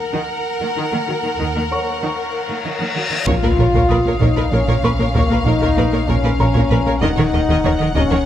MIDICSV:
0, 0, Header, 1, 13, 480
1, 0, Start_track
1, 0, Key_signature, -5, "minor"
1, 0, Tempo, 625000
1, 1071, Time_signature, 6, 3, 24, 8
1, 6341, End_track
2, 0, Start_track
2, 0, Title_t, "Felt piano"
2, 0, Program_c, 0, 0
2, 0, Control_c, 0, 64, 127
2, 0, Note_on_c, 0, 82, 41
2, 84, Note_off_c, 0, 82, 0
2, 1318, Note_on_c, 0, 73, 26
2, 1321, Note_on_c, 0, 85, 39
2, 2483, Note_off_c, 0, 73, 0
2, 2485, Note_off_c, 0, 85, 0
2, 2525, Control_c, 0, 64, 0
2, 2667, Control_c, 0, 64, 127
2, 2985, Note_on_c, 0, 87, 45
2, 3719, Note_on_c, 0, 85, 44
2, 4397, Note_off_c, 0, 87, 0
2, 4916, Note_on_c, 0, 82, 45
2, 5124, Note_off_c, 0, 85, 0
2, 5404, Control_c, 0, 64, 0
2, 5540, Control_c, 0, 64, 127
2, 6322, Note_off_c, 0, 82, 0
2, 6341, End_track
3, 0, Start_track
3, 0, Title_t, "Violin section"
3, 0, Program_c, 1, 48
3, 2517, Note_on_c, 1, 77, 68
3, 5363, Note_off_c, 1, 77, 0
3, 5391, Note_on_c, 1, 78, 69
3, 6341, Note_off_c, 1, 78, 0
3, 6341, End_track
4, 0, Start_track
4, 0, Title_t, "Violin section"
4, 0, Program_c, 2, 48
4, 0, Note_on_c, 2, 70, 60
4, 0, Note_on_c, 2, 78, 54
4, 2324, Note_off_c, 2, 78, 0
4, 2325, Note_off_c, 2, 70, 0
4, 2510, Note_on_c, 2, 73, 77
4, 2558, Note_off_c, 2, 73, 0
4, 2641, Note_on_c, 2, 71, 49
4, 2687, Note_off_c, 2, 71, 0
4, 2759, Note_on_c, 2, 73, 45
4, 2805, Note_off_c, 2, 73, 0
4, 2882, Note_on_c, 2, 73, 76
4, 2928, Note_off_c, 2, 73, 0
4, 2996, Note_on_c, 2, 71, 49
4, 3043, Note_off_c, 2, 71, 0
4, 3125, Note_on_c, 2, 73, 48
4, 3170, Note_off_c, 2, 73, 0
4, 3236, Note_on_c, 2, 73, 69
4, 3283, Note_off_c, 2, 73, 0
4, 3352, Note_on_c, 2, 71, 56
4, 3400, Note_off_c, 2, 71, 0
4, 3477, Note_on_c, 2, 73, 54
4, 3524, Note_off_c, 2, 73, 0
4, 3593, Note_on_c, 2, 73, 79
4, 3640, Note_off_c, 2, 73, 0
4, 3717, Note_on_c, 2, 71, 64
4, 3763, Note_off_c, 2, 71, 0
4, 3848, Note_on_c, 2, 73, 60
4, 3892, Note_off_c, 2, 73, 0
4, 3969, Note_on_c, 2, 73, 68
4, 4014, Note_off_c, 2, 73, 0
4, 4089, Note_on_c, 2, 71, 47
4, 4133, Note_off_c, 2, 71, 0
4, 4201, Note_on_c, 2, 73, 48
4, 4247, Note_off_c, 2, 73, 0
4, 4324, Note_on_c, 2, 73, 68
4, 4369, Note_off_c, 2, 73, 0
4, 4432, Note_on_c, 2, 71, 53
4, 4480, Note_off_c, 2, 71, 0
4, 4555, Note_on_c, 2, 73, 51
4, 4602, Note_off_c, 2, 73, 0
4, 4675, Note_on_c, 2, 73, 64
4, 4722, Note_off_c, 2, 73, 0
4, 4791, Note_on_c, 2, 71, 52
4, 4839, Note_off_c, 2, 71, 0
4, 4912, Note_on_c, 2, 73, 59
4, 4959, Note_off_c, 2, 73, 0
4, 5017, Note_on_c, 2, 73, 75
4, 5068, Note_off_c, 2, 73, 0
4, 5145, Note_on_c, 2, 71, 63
4, 5194, Note_off_c, 2, 71, 0
4, 5270, Note_on_c, 2, 73, 60
4, 5318, Note_off_c, 2, 73, 0
4, 5384, Note_on_c, 2, 75, 75
4, 5433, Note_off_c, 2, 75, 0
4, 5505, Note_on_c, 2, 73, 55
4, 5554, Note_off_c, 2, 73, 0
4, 5633, Note_on_c, 2, 75, 45
4, 5681, Note_off_c, 2, 75, 0
4, 5757, Note_on_c, 2, 75, 76
4, 5804, Note_off_c, 2, 75, 0
4, 5871, Note_on_c, 2, 73, 48
4, 5919, Note_off_c, 2, 73, 0
4, 5980, Note_on_c, 2, 75, 43
4, 6030, Note_off_c, 2, 75, 0
4, 6104, Note_on_c, 2, 75, 75
4, 6153, Note_off_c, 2, 75, 0
4, 6227, Note_on_c, 2, 73, 59
4, 6276, Note_off_c, 2, 73, 0
4, 6341, End_track
5, 0, Start_track
5, 0, Title_t, "Viola section"
5, 0, Program_c, 3, 48
5, 0, Note_on_c, 3, 70, 54
5, 101, Note_on_c, 3, 63, 60
5, 151, Note_off_c, 3, 63, 0
5, 471, Note_on_c, 3, 58, 45
5, 519, Note_off_c, 3, 58, 0
5, 586, Note_on_c, 3, 63, 54
5, 635, Note_off_c, 3, 63, 0
5, 709, Note_on_c, 3, 58, 43
5, 757, Note_off_c, 3, 58, 0
5, 826, Note_on_c, 3, 54, 42
5, 875, Note_off_c, 3, 54, 0
5, 951, Note_on_c, 3, 58, 39
5, 999, Note_off_c, 3, 58, 0
5, 1062, Note_on_c, 3, 63, 49
5, 1112, Note_off_c, 3, 63, 0
5, 1192, Note_on_c, 3, 58, 29
5, 1240, Note_off_c, 3, 58, 0
5, 1554, Note_on_c, 3, 63, 45
5, 1601, Note_off_c, 3, 63, 0
5, 1910, Note_on_c, 3, 58, 31
5, 1958, Note_off_c, 3, 58, 0
5, 2031, Note_on_c, 3, 63, 37
5, 2079, Note_off_c, 3, 63, 0
5, 2157, Note_on_c, 3, 58, 32
5, 2203, Note_off_c, 3, 58, 0
5, 2273, Note_on_c, 3, 54, 35
5, 2320, Note_off_c, 3, 54, 0
5, 2324, Note_off_c, 3, 70, 0
5, 2396, Note_on_c, 3, 58, 31
5, 2443, Note_off_c, 3, 58, 0
5, 2517, Note_on_c, 3, 70, 73
5, 2563, Note_off_c, 3, 70, 0
5, 2634, Note_on_c, 3, 70, 51
5, 2681, Note_off_c, 3, 70, 0
5, 2753, Note_on_c, 3, 70, 53
5, 2800, Note_off_c, 3, 70, 0
5, 2874, Note_on_c, 3, 70, 67
5, 2922, Note_off_c, 3, 70, 0
5, 2995, Note_on_c, 3, 70, 51
5, 3042, Note_off_c, 3, 70, 0
5, 3120, Note_on_c, 3, 70, 48
5, 3166, Note_off_c, 3, 70, 0
5, 3229, Note_on_c, 3, 70, 60
5, 3278, Note_off_c, 3, 70, 0
5, 3351, Note_on_c, 3, 70, 59
5, 3399, Note_off_c, 3, 70, 0
5, 3472, Note_on_c, 3, 70, 55
5, 3520, Note_off_c, 3, 70, 0
5, 3592, Note_on_c, 3, 70, 72
5, 3639, Note_off_c, 3, 70, 0
5, 3709, Note_on_c, 3, 70, 59
5, 3757, Note_off_c, 3, 70, 0
5, 3831, Note_on_c, 3, 70, 51
5, 3879, Note_off_c, 3, 70, 0
5, 3948, Note_on_c, 3, 70, 62
5, 3997, Note_off_c, 3, 70, 0
5, 4069, Note_on_c, 3, 70, 49
5, 4117, Note_off_c, 3, 70, 0
5, 4194, Note_on_c, 3, 70, 56
5, 4241, Note_off_c, 3, 70, 0
5, 4311, Note_on_c, 3, 70, 66
5, 4359, Note_off_c, 3, 70, 0
5, 4434, Note_on_c, 3, 70, 50
5, 4481, Note_off_c, 3, 70, 0
5, 4550, Note_on_c, 3, 70, 54
5, 4598, Note_off_c, 3, 70, 0
5, 4672, Note_on_c, 3, 70, 65
5, 4720, Note_off_c, 3, 70, 0
5, 4794, Note_on_c, 3, 70, 54
5, 4841, Note_off_c, 3, 70, 0
5, 4909, Note_on_c, 3, 70, 48
5, 4958, Note_off_c, 3, 70, 0
5, 5029, Note_on_c, 3, 70, 58
5, 5077, Note_off_c, 3, 70, 0
5, 5154, Note_on_c, 3, 70, 57
5, 5201, Note_off_c, 3, 70, 0
5, 5271, Note_on_c, 3, 70, 59
5, 5319, Note_off_c, 3, 70, 0
5, 5392, Note_on_c, 3, 70, 71
5, 5440, Note_off_c, 3, 70, 0
5, 5515, Note_on_c, 3, 70, 44
5, 5562, Note_off_c, 3, 70, 0
5, 5632, Note_on_c, 3, 70, 50
5, 5680, Note_off_c, 3, 70, 0
5, 5753, Note_on_c, 3, 70, 76
5, 5801, Note_off_c, 3, 70, 0
5, 5876, Note_on_c, 3, 70, 52
5, 5923, Note_off_c, 3, 70, 0
5, 5994, Note_on_c, 3, 70, 52
5, 6042, Note_off_c, 3, 70, 0
5, 6107, Note_on_c, 3, 70, 68
5, 6156, Note_off_c, 3, 70, 0
5, 6226, Note_on_c, 3, 70, 51
5, 6275, Note_off_c, 3, 70, 0
5, 6341, End_track
6, 0, Start_track
6, 0, Title_t, "French horn section"
6, 0, Program_c, 4, 60
6, 2506, Note_on_c, 4, 65, 98
6, 3198, Note_off_c, 4, 65, 0
6, 3230, Note_on_c, 4, 63, 87
6, 3465, Note_off_c, 4, 63, 0
6, 3469, Note_on_c, 4, 61, 77
6, 3950, Note_off_c, 4, 61, 0
6, 3958, Note_on_c, 4, 58, 82
6, 4190, Note_on_c, 4, 63, 93
6, 4194, Note_off_c, 4, 58, 0
6, 4670, Note_off_c, 4, 63, 0
6, 4674, Note_on_c, 4, 61, 88
6, 5389, Note_on_c, 4, 63, 92
6, 5392, Note_off_c, 4, 61, 0
6, 6109, Note_on_c, 4, 61, 88
6, 6110, Note_off_c, 4, 63, 0
6, 6341, Note_off_c, 4, 61, 0
6, 6341, End_track
7, 0, Start_track
7, 0, Title_t, "Analog synth bass"
7, 0, Program_c, 5, 38
7, 2509, Note_on_c, 5, 46, 90
7, 2582, Note_off_c, 5, 46, 0
7, 2631, Note_on_c, 5, 58, 68
7, 2703, Note_off_c, 5, 58, 0
7, 2756, Note_on_c, 5, 46, 68
7, 2826, Note_off_c, 5, 46, 0
7, 2873, Note_on_c, 5, 46, 86
7, 2945, Note_off_c, 5, 46, 0
7, 2996, Note_on_c, 5, 58, 65
7, 3067, Note_off_c, 5, 58, 0
7, 3112, Note_on_c, 5, 58, 65
7, 3183, Note_off_c, 5, 58, 0
7, 3236, Note_on_c, 5, 46, 86
7, 3306, Note_off_c, 5, 46, 0
7, 3358, Note_on_c, 5, 46, 62
7, 3428, Note_off_c, 5, 46, 0
7, 3477, Note_on_c, 5, 46, 63
7, 3547, Note_off_c, 5, 46, 0
7, 3594, Note_on_c, 5, 46, 88
7, 3665, Note_off_c, 5, 46, 0
7, 3717, Note_on_c, 5, 58, 65
7, 3787, Note_off_c, 5, 58, 0
7, 3835, Note_on_c, 5, 58, 61
7, 3906, Note_off_c, 5, 58, 0
7, 3954, Note_on_c, 5, 46, 88
7, 4025, Note_off_c, 5, 46, 0
7, 4070, Note_on_c, 5, 58, 69
7, 4142, Note_off_c, 5, 58, 0
7, 4191, Note_on_c, 5, 46, 67
7, 4263, Note_off_c, 5, 46, 0
7, 4313, Note_on_c, 5, 46, 90
7, 4384, Note_off_c, 5, 46, 0
7, 4433, Note_on_c, 5, 58, 64
7, 4504, Note_off_c, 5, 58, 0
7, 4554, Note_on_c, 5, 58, 66
7, 4625, Note_off_c, 5, 58, 0
7, 4672, Note_on_c, 5, 46, 83
7, 4743, Note_off_c, 5, 46, 0
7, 4790, Note_on_c, 5, 46, 66
7, 4862, Note_off_c, 5, 46, 0
7, 4911, Note_on_c, 5, 46, 64
7, 4983, Note_off_c, 5, 46, 0
7, 5030, Note_on_c, 5, 46, 94
7, 5102, Note_off_c, 5, 46, 0
7, 5150, Note_on_c, 5, 58, 62
7, 5222, Note_off_c, 5, 58, 0
7, 5272, Note_on_c, 5, 58, 66
7, 5343, Note_off_c, 5, 58, 0
7, 5391, Note_on_c, 5, 39, 93
7, 5463, Note_off_c, 5, 39, 0
7, 5509, Note_on_c, 5, 51, 66
7, 5581, Note_off_c, 5, 51, 0
7, 5627, Note_on_c, 5, 39, 66
7, 5700, Note_off_c, 5, 39, 0
7, 5747, Note_on_c, 5, 39, 93
7, 5820, Note_off_c, 5, 39, 0
7, 5867, Note_on_c, 5, 51, 66
7, 5940, Note_off_c, 5, 51, 0
7, 5988, Note_on_c, 5, 51, 68
7, 6061, Note_off_c, 5, 51, 0
7, 6109, Note_on_c, 5, 39, 86
7, 6181, Note_off_c, 5, 39, 0
7, 6228, Note_on_c, 5, 39, 64
7, 6301, Note_off_c, 5, 39, 0
7, 6341, End_track
8, 0, Start_track
8, 0, Title_t, "Cello section"
8, 0, Program_c, 6, 48
8, 101, Note_on_c, 6, 51, 66
8, 151, Note_off_c, 6, 51, 0
8, 469, Note_on_c, 6, 51, 42
8, 517, Note_off_c, 6, 51, 0
8, 587, Note_on_c, 6, 51, 63
8, 636, Note_off_c, 6, 51, 0
8, 709, Note_on_c, 6, 51, 41
8, 757, Note_off_c, 6, 51, 0
8, 827, Note_on_c, 6, 51, 39
8, 876, Note_off_c, 6, 51, 0
8, 949, Note_on_c, 6, 51, 38
8, 997, Note_off_c, 6, 51, 0
8, 1073, Note_on_c, 6, 51, 47
8, 1121, Note_off_c, 6, 51, 0
8, 1198, Note_on_c, 6, 51, 36
8, 1244, Note_off_c, 6, 51, 0
8, 1550, Note_on_c, 6, 51, 47
8, 1598, Note_off_c, 6, 51, 0
8, 1912, Note_on_c, 6, 51, 32
8, 1959, Note_off_c, 6, 51, 0
8, 2031, Note_on_c, 6, 51, 44
8, 2079, Note_off_c, 6, 51, 0
8, 2145, Note_on_c, 6, 51, 31
8, 2194, Note_off_c, 6, 51, 0
8, 2268, Note_on_c, 6, 51, 31
8, 2316, Note_off_c, 6, 51, 0
8, 2385, Note_on_c, 6, 51, 34
8, 2434, Note_off_c, 6, 51, 0
8, 2505, Note_on_c, 6, 46, 64
8, 2554, Note_off_c, 6, 46, 0
8, 2634, Note_on_c, 6, 46, 49
8, 2681, Note_off_c, 6, 46, 0
8, 2749, Note_on_c, 6, 46, 56
8, 2797, Note_off_c, 6, 46, 0
8, 2870, Note_on_c, 6, 46, 67
8, 2918, Note_off_c, 6, 46, 0
8, 2987, Note_on_c, 6, 46, 49
8, 3035, Note_off_c, 6, 46, 0
8, 3109, Note_on_c, 6, 46, 51
8, 3158, Note_off_c, 6, 46, 0
8, 3224, Note_on_c, 6, 46, 72
8, 3273, Note_off_c, 6, 46, 0
8, 3350, Note_on_c, 6, 46, 51
8, 3398, Note_off_c, 6, 46, 0
8, 3472, Note_on_c, 6, 46, 48
8, 3520, Note_off_c, 6, 46, 0
8, 3588, Note_on_c, 6, 46, 69
8, 3637, Note_off_c, 6, 46, 0
8, 3708, Note_on_c, 6, 46, 54
8, 3756, Note_off_c, 6, 46, 0
8, 3827, Note_on_c, 6, 46, 51
8, 3876, Note_off_c, 6, 46, 0
8, 3948, Note_on_c, 6, 46, 68
8, 3996, Note_off_c, 6, 46, 0
8, 4070, Note_on_c, 6, 46, 46
8, 4118, Note_off_c, 6, 46, 0
8, 4188, Note_on_c, 6, 46, 57
8, 4237, Note_off_c, 6, 46, 0
8, 4307, Note_on_c, 6, 46, 75
8, 4356, Note_off_c, 6, 46, 0
8, 4431, Note_on_c, 6, 46, 55
8, 4479, Note_off_c, 6, 46, 0
8, 4554, Note_on_c, 6, 46, 53
8, 4601, Note_off_c, 6, 46, 0
8, 4670, Note_on_c, 6, 46, 68
8, 4718, Note_off_c, 6, 46, 0
8, 4791, Note_on_c, 6, 46, 50
8, 4839, Note_off_c, 6, 46, 0
8, 4912, Note_on_c, 6, 46, 52
8, 4960, Note_off_c, 6, 46, 0
8, 5031, Note_on_c, 6, 46, 65
8, 5079, Note_off_c, 6, 46, 0
8, 5155, Note_on_c, 6, 46, 49
8, 5202, Note_off_c, 6, 46, 0
8, 5272, Note_on_c, 6, 46, 59
8, 5319, Note_off_c, 6, 46, 0
8, 5394, Note_on_c, 6, 51, 72
8, 5441, Note_off_c, 6, 51, 0
8, 5518, Note_on_c, 6, 51, 54
8, 5564, Note_off_c, 6, 51, 0
8, 5636, Note_on_c, 6, 51, 58
8, 5683, Note_off_c, 6, 51, 0
8, 5755, Note_on_c, 6, 51, 79
8, 5802, Note_off_c, 6, 51, 0
8, 5872, Note_on_c, 6, 51, 57
8, 5919, Note_off_c, 6, 51, 0
8, 5992, Note_on_c, 6, 51, 56
8, 6040, Note_off_c, 6, 51, 0
8, 6109, Note_on_c, 6, 51, 81
8, 6157, Note_off_c, 6, 51, 0
8, 6231, Note_on_c, 6, 51, 54
8, 6279, Note_off_c, 6, 51, 0
8, 6341, End_track
9, 0, Start_track
9, 0, Title_t, "Double bass section"
9, 0, Program_c, 7, 48
9, 1077, Note_on_c, 7, 39, 47
9, 1186, Note_off_c, 7, 39, 0
9, 2509, Note_on_c, 7, 34, 74
9, 2557, Note_off_c, 7, 34, 0
9, 2752, Note_on_c, 7, 34, 51
9, 2800, Note_off_c, 7, 34, 0
9, 2989, Note_on_c, 7, 34, 53
9, 3038, Note_off_c, 7, 34, 0
9, 3226, Note_on_c, 7, 34, 69
9, 3275, Note_off_c, 7, 34, 0
9, 3461, Note_on_c, 7, 34, 53
9, 3511, Note_off_c, 7, 34, 0
9, 3708, Note_on_c, 7, 34, 53
9, 3756, Note_off_c, 7, 34, 0
9, 3947, Note_on_c, 7, 34, 67
9, 3996, Note_off_c, 7, 34, 0
9, 4189, Note_on_c, 7, 34, 50
9, 4237, Note_off_c, 7, 34, 0
9, 4428, Note_on_c, 7, 34, 51
9, 4477, Note_off_c, 7, 34, 0
9, 4672, Note_on_c, 7, 34, 69
9, 4720, Note_off_c, 7, 34, 0
9, 4910, Note_on_c, 7, 34, 54
9, 4958, Note_off_c, 7, 34, 0
9, 5149, Note_on_c, 7, 34, 55
9, 5198, Note_off_c, 7, 34, 0
9, 5390, Note_on_c, 7, 39, 72
9, 5438, Note_off_c, 7, 39, 0
9, 5631, Note_on_c, 7, 39, 58
9, 5679, Note_off_c, 7, 39, 0
9, 5869, Note_on_c, 7, 39, 56
9, 5917, Note_off_c, 7, 39, 0
9, 6106, Note_on_c, 7, 39, 80
9, 6155, Note_off_c, 7, 39, 0
9, 6341, End_track
10, 0, Start_track
10, 0, Title_t, "Sub bass"
10, 0, Program_c, 8, 38
10, 2512, Note_on_c, 8, 34, 74
10, 5397, Note_on_c, 8, 27, 70
10, 5409, Note_off_c, 8, 34, 0
10, 6341, Note_off_c, 8, 27, 0
10, 6341, End_track
11, 0, Start_track
11, 0, Title_t, "Impact"
11, 0, Program_c, 10, 103
11, 2513, Note_on_c, 10, 60, 70
11, 3952, Note_off_c, 10, 60, 0
11, 6341, End_track
12, 0, Start_track
12, 0, Title_t, "Reverse cymbal"
12, 0, Program_c, 11, 119
12, 1071, Note_on_c, 11, 60, 45
12, 2511, Note_off_c, 11, 60, 0
12, 6341, End_track
13, 0, Start_track
13, 0, Title_t, "Taiko and cinematic ensemble drums"
13, 2512, Note_on_c, 9, 41, 96
13, 2589, Note_off_c, 9, 41, 0
13, 2634, Note_on_c, 9, 45, 46
13, 2711, Note_off_c, 9, 45, 0
13, 2876, Note_on_c, 9, 41, 71
13, 2953, Note_off_c, 9, 41, 0
13, 3235, Note_on_c, 9, 41, 71
13, 3312, Note_off_c, 9, 41, 0
13, 3474, Note_on_c, 9, 45, 56
13, 3550, Note_off_c, 9, 45, 0
13, 3596, Note_on_c, 9, 41, 75
13, 3672, Note_off_c, 9, 41, 0
13, 3715, Note_on_c, 9, 45, 56
13, 3792, Note_off_c, 9, 45, 0
13, 3839, Note_on_c, 9, 45, 51
13, 3916, Note_off_c, 9, 45, 0
13, 3954, Note_on_c, 9, 41, 98
13, 4031, Note_off_c, 9, 41, 0
13, 4076, Note_on_c, 9, 45, 50
13, 4153, Note_off_c, 9, 45, 0
13, 4316, Note_on_c, 9, 41, 77
13, 4393, Note_off_c, 9, 41, 0
13, 4673, Note_on_c, 9, 41, 69
13, 4750, Note_off_c, 9, 41, 0
13, 4913, Note_on_c, 9, 45, 54
13, 4990, Note_off_c, 9, 45, 0
13, 5031, Note_on_c, 9, 41, 76
13, 5108, Note_off_c, 9, 41, 0
13, 5152, Note_on_c, 9, 45, 53
13, 5228, Note_off_c, 9, 45, 0
13, 5270, Note_on_c, 9, 45, 49
13, 5347, Note_off_c, 9, 45, 0
13, 5391, Note_on_c, 9, 41, 103
13, 5468, Note_off_c, 9, 41, 0
13, 5510, Note_on_c, 9, 45, 51
13, 5587, Note_off_c, 9, 45, 0
13, 5748, Note_on_c, 9, 41, 68
13, 5825, Note_off_c, 9, 41, 0
13, 6107, Note_on_c, 9, 41, 78
13, 6184, Note_off_c, 9, 41, 0
13, 6341, End_track
0, 0, End_of_file